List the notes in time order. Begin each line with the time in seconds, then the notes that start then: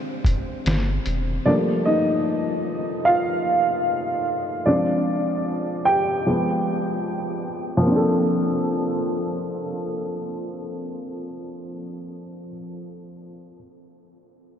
Already playing: G3 G#3 C4 D4 C5
0.25 kick, closed hi-hat
0.66 G1, snare, closed hi-hat
1.06 E1, closed hi-hat
1.46 F3 G3 A3 A#3 D4 D5
1.85 D#4 D#5
3.05 F4 F5
4.66 F3 G#3 C4 D4 D5
5.85 G4 G5
6.27 F3 G#3 B3
7.77 F3
7.82 A#3
7.87 C4
7.91 D4
7.96 A4